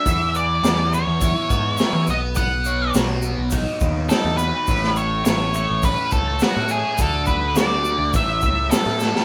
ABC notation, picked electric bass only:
X:1
M:4/4
L:1/16
Q:1/4=104
K:A
V:1 name="Picked electric bass" clef=bass
E,,4 E,,3 E,,2 z G,,2 z E, B,,,2- | B,,,4 B,,,3 B,,,2 z ^D,,2 z E,,2 z | A,,,4 A,,,3 A,,,2 z C,,2 z A,,2 z | D,,4 D,,3 D,, A,,,2 C,,2 z A,,2 z |]